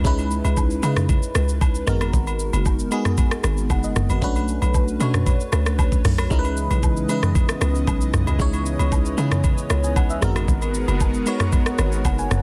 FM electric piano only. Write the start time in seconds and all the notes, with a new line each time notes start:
Already playing: G#3 C#4 D#4 E4 B4
0.04 G#3 C#4 D#4 E4 B4
0.82 G#3 C#4 D#4 E4 B4
1.87 G#3 B3 D#4 F#4 A#4
2.91 G#3 B3 D#4 F#4 G#4
3.71 F#5
3.84 D#5
4.10 B4
4.21 A3 C#4 D4 F#4 B4
5.00 A3 C#4 D4 F#4 C#5
6.30 G#3 C#4 D#4 E4 A#4
6.39 B4
7.08 G#3 C#4 D#4 E4 B4
8.39 G#3 C#4 D#4 E4 C#5
9.17 G#3 C#4 D#4 E4 G#4
9.84 G#5
9.97 F#5
10.10 E5
10.21 G#3 B3 D#4 F#4 A#4
11.26 G#3 B3 D#4 F#4 C#5
12.05 F#5
12.19 G#5